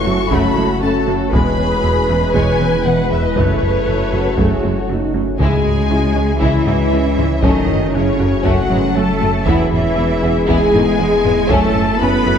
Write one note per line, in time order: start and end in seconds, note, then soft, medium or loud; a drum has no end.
0.00 1.35 F#1 medium
0.00 1.30 C#3 medium
0.00 1.30 A3 medium
0.00 1.33 A3 medium
0.00 1.29 C#4 medium
0.00 1.33 C#4 medium
0.00 1.29 F#4 medium
0.00 1.33 F#4 medium
0.00 1.33 C#5 medium
0.00 0.30 C#6 loud
0.05 0.15 F#1 medium
0.05 0.13 F#2 soft
0.05 0.21 F#2 medium
0.05 0.14 F#3 medium
0.05 0.21 F#4 medium
0.05 0.82 A4 medium
0.31 0.40 F#1 medium
0.31 0.46 F#2 medium
0.31 0.39 F#2 medium
0.31 0.47 F#3 medium
0.31 0.55 A3 medium
0.31 0.82 B5 medium
0.31 taiko medium
0.56 0.65 F#1 medium
0.56 0.64 F#2 medium
0.56 0.72 F#3 medium
0.56 0.64 G#3 medium
0.56 0.72 C#4 medium
0.82 0.91 F#1 soft
0.82 0.90 F#2 medium
0.82 0.97 F#3 medium
0.82 0.90 A3 medium
0.82 0.98 C#4 medium
0.82 1.32 A4 medium
0.82 1.07 A5 medium
1.07 1.16 F#1 soft
1.07 1.15 F#2 medium
1.07 1.22 F#2 medium
1.07 1.16 F#3 medium
1.07 1.23 A3 medium
1.32 1.41 E1 medium
1.32 3.38 E1 medium
1.32 1.40 E2 medium
1.32 1.48 E2 medium
1.32 3.36 E3 medium
1.32 1.49 E3 medium
1.32 1.56 G#3 medium
1.32 3.21 G#3 medium
1.32 3.33 G#3 medium
1.32 3.37 G#3 medium
1.32 3.38 E4 medium
1.32 2.34 G#4 medium
1.32 3.37 G#4 medium
1.32 4.34 B4 medium
1.32 3.78 B4 medium
1.32 2.30 B5 medium
1.32 taiko loud
1.58 1.73 E2 medium
1.83 1.92 E1 medium
1.83 1.91 E2 medium
1.83 1.99 E2 medium
1.83 1.92 G#3 soft
1.83 1.99 E4 medium
2.09 2.18 E1 soft
2.09 2.17 E2 soft
2.09 2.25 E2 medium
2.09 2.17 E3 medium
2.09 2.25 E4 medium
2.34 2.43 E1 medium
2.34 2.42 E2 medium
2.34 2.50 E2 medium
2.34 2.50 E3 medium
2.34 2.58 G#3 medium
2.34 2.60 C#5 medium
2.34 2.85 G#5 medium
2.34 taiko medium
2.59 2.69 E1 medium
2.59 2.68 E2 soft
2.59 2.76 E3 medium
2.59 2.69 F#3 medium
2.59 2.75 B3 medium
2.59 3.36 B4 medium
2.85 2.94 E1 soft
2.85 2.93 E2 soft
2.85 3.01 E3 medium
2.85 2.94 G#3 soft
2.85 3.01 B3 medium
2.85 3.11 F#5 medium
3.11 3.20 E1 soft
3.11 3.19 E2 soft
3.11 3.27 E2 medium
3.11 3.19 E3 soft
3.11 3.26 G#3 medium
3.11 3.23 E5 medium
3.24 3.37 D#5 medium
3.35 3.45 F#1 medium
3.35 5.40 F#1 medium
3.35 3.44 F#2 medium
3.35 3.52 F#2 medium
3.35 5.12 C#3 medium
3.35 3.51 F#3 medium
3.35 5.40 A3 medium
3.35 3.60 A3 medium
3.35 5.15 A3 medium
3.35 5.38 C#4 medium
3.35 3.82 C#4 medium
3.35 5.40 F#4 medium
3.35 5.14 A4 medium
3.35 5.39 C#5 medium
3.35 4.89 C#5 medium
3.35 taiko medium
3.62 3.77 F#2 medium
3.87 3.96 F#1 soft
3.87 3.95 F#2 soft
3.87 4.03 F#2 medium
3.87 3.95 A3 soft
3.87 4.12 E4 medium
3.87 4.02 F#4 medium
4.12 4.21 F#1 soft
4.12 4.20 F#2 soft
4.12 4.28 F#2 medium
4.12 4.21 F#3 soft
4.12 4.27 F#4 medium
4.12 4.39 F#4 medium
4.37 4.46 F#1 medium
4.37 4.46 F#2 medium
4.37 4.54 F#2 medium
4.37 4.53 F#3 medium
4.37 4.62 A3 medium
4.37 5.20 F#4 medium
4.37 4.64 G#4 medium
4.37 taiko medium
4.63 4.71 F#1 soft
4.63 4.71 F#2 soft
4.63 4.79 F#3 medium
4.63 4.72 G#3 soft
4.63 4.79 C#4 medium
4.63 4.90 F#4 medium
4.89 4.97 F#1 soft
4.89 4.97 F#2 soft
4.89 5.05 F#3 medium
4.89 4.97 A3 soft
4.89 5.04 C#4 medium
4.89 5.16 D#4 medium
5.14 5.22 F#1 soft
5.14 5.22 F#2 soft
5.14 5.30 F#2 medium
5.14 5.22 F#3 soft
5.14 5.29 A3 medium
5.14 5.39 C#4 medium
5.39 5.47 C#2 medium
5.39 7.45 C#2 medium
5.39 5.56 C#2 medium
5.39 5.55 C#3 medium
5.39 9.43 C#3 medium
5.39 6.37 G#3 medium
5.39 5.63 G#3 medium
5.39 7.39 G#3 medium
5.39 7.40 G#3 medium
5.39 9.42 C#4 medium
5.39 9.30 C#4 medium
5.39 5.63 E4 medium
5.39 7.39 E4 medium
5.39 7.40 E4 medium
5.39 6.37 G#4 medium
5.39 9.43 C#5 medium
5.39 6.37 G#5 medium
5.39 taiko loud
5.65 5.81 C#2 medium
5.65 taiko low-mid soft
5.89 5.98 C#2 soft
5.89 6.06 C#2 medium
5.89 5.97 G#3 soft
5.89 6.06 C#4 medium
5.89 5.98 E4 soft
6.16 6.24 C#2 soft
6.16 6.32 C#2 medium
6.16 6.24 G#3 soft
6.16 6.24 C#4 soft
6.16 6.31 C#4 medium
6.40 6.49 C#2 medium
6.40 6.57 C#2 medium
6.40 6.57 C#3 medium
6.40 7.43 E3 medium
6.40 6.65 G#3 medium
6.40 6.64 E4 medium
6.40 7.43 E4 medium
6.40 7.41 E5 medium
6.40 taiko medium
6.66 6.75 C#2 soft
6.66 6.83 C#3 medium
6.66 6.82 G#3 medium
6.66 6.75 D#4 soft
6.66 6.75 F#4 soft
6.66 taiko low-mid soft
6.92 7.00 C#2 soft
6.92 7.08 C#3 medium
6.92 7.00 G#3 soft
6.92 7.08 G#3 medium
6.92 7.00 E4 medium
7.18 7.26 C#2 soft
7.18 7.34 C#2 medium
7.18 7.33 E3 medium
7.18 7.26 G#3 medium
7.18 7.26 C#4 medium
7.18 taiko low-mid soft
7.42 9.47 F#1 medium
7.42 7.52 F#2 medium
7.42 7.59 F#2 medium
7.42 7.93 D#3 medium
7.42 7.59 F#3 medium
7.42 7.67 A3 medium
7.42 9.43 A3 medium
7.42 9.47 A3 medium
7.42 7.67 C#4 medium
7.42 7.93 D#4 medium
7.42 9.30 F#4 medium
7.42 9.47 F#4 medium
7.42 7.94 D#5 medium
7.42 taiko loud
7.69 7.84 F#2 medium
7.69 taiko low-mid soft
7.93 8.02 F#2 medium
7.93 8.10 F#2 medium
7.93 8.44 C#3 medium
7.93 8.02 A3 soft
7.93 8.01 C#4 soft
7.93 8.45 C#4 medium
7.93 8.10 F#4 medium
7.93 8.44 C#5 medium
8.19 8.35 F#2 medium
8.19 8.28 F#2 soft
8.19 8.27 A3 medium
8.19 8.35 F#4 medium
8.44 8.60 F#2 medium
8.44 8.53 F#2 medium
8.44 8.95 F#3 medium
8.44 8.60 F#3 medium
8.44 8.68 A3 medium
8.44 8.68 C#4 medium
8.44 8.95 F#4 medium
8.44 8.96 F#5 medium
8.44 taiko medium
8.70 8.79 F#2 medium
8.70 8.85 F#3 medium
8.70 8.78 G#3 medium
8.70 8.78 B3 medium
8.70 8.86 C#4 medium
8.70 taiko low-mid soft
8.95 9.04 F#2 soft
8.95 9.11 F#3 medium
8.95 9.03 A3 medium
8.95 9.47 A3 medium
8.95 9.11 C#4 medium
8.95 9.03 C#4 soft
8.95 9.45 A4 medium
8.95 9.46 A5 medium
9.20 9.29 F#2 medium
9.20 9.37 F#2 medium
9.20 9.28 A3 medium
9.20 9.36 A3 medium
9.20 taiko low-mid soft
9.46 11.52 E1 medium
9.46 9.55 E2 medium
9.46 9.62 E2 medium
9.46 9.71 E3 medium
9.46 11.33 E3 medium
9.46 9.62 E3 medium
9.46 11.50 G#3 medium
9.46 11.33 G#3 medium
9.46 9.70 B3 medium
9.46 11.46 B3 medium
9.46 9.70 E4 medium
9.46 11.50 E4 medium
9.46 11.50 G#4 medium
9.46 11.46 G#4 medium
9.46 11.50 B4 medium
9.46 9.70 E5 medium
9.46 taiko loud
9.71 9.87 E2 medium
9.71 10.47 E3 medium
9.71 10.47 E4 medium
9.71 10.46 E5 medium
9.71 taiko low-mid soft
9.96 10.13 E2 medium
9.96 10.06 E2 medium
9.96 10.04 B3 soft
9.96 10.04 E4 soft
9.96 10.13 E4 medium
10.23 10.38 E2 medium
10.23 10.31 E2 medium
10.23 10.31 G#3 medium
10.23 10.31 B3 medium
10.23 10.38 E4 medium
10.47 10.56 E2 medium
10.47 10.64 E2 medium
10.47 10.64 E3 medium
10.47 11.48 G#3 medium
10.47 10.71 B3 medium
10.47 10.72 E4 medium
10.47 11.49 G#4 medium
10.47 11.48 G#5 medium
10.47 taiko medium
10.73 10.82 E2 medium
10.73 10.89 E3 medium
10.73 10.82 A3 medium
10.73 10.89 B3 medium
10.73 10.81 D#4 medium
10.73 taiko low-mid soft
10.98 11.07 E2 medium
10.98 11.15 E3 medium
10.98 11.06 B3 medium
10.98 11.15 B3 medium
10.98 11.07 E4 medium
11.25 11.33 E2 medium
11.25 11.40 E2 medium
11.25 11.33 G#3 medium
11.25 11.40 G#3 medium
11.25 11.33 B3 medium
11.25 taiko low-mid medium
11.49 12.38 F#1 medium
11.49 11.65 F#2 medium
11.49 11.58 F#2 medium
11.49 12.38 C#3 medium
11.49 11.66 F#3 medium
11.49 12.38 F#3 medium
11.49 11.73 A3 medium
11.49 12.01 A3 medium
11.49 12.38 A3 medium
11.49 11.73 C#4 medium
11.49 12.38 C#4 medium
11.49 12.38 F#4 medium
11.49 12.00 A4 medium
11.49 12.38 A4 medium
11.49 12.38 C#5 medium
11.49 12.01 A5 loud
11.49 taiko loud
11.75 11.90 F#2 medium
11.75 taiko low-mid soft
12.00 12.09 F#2 medium
12.00 12.17 F#2 medium
12.00 12.10 A3 soft
12.00 12.38 B3 medium
12.00 12.10 C#4 medium
12.00 12.17 F#4 medium
12.00 12.38 B4 medium
12.00 12.38 B5 loud
12.25 12.38 F#2 medium
12.25 12.34 F#2 medium
12.25 12.34 A3 medium
12.25 12.38 F#4 medium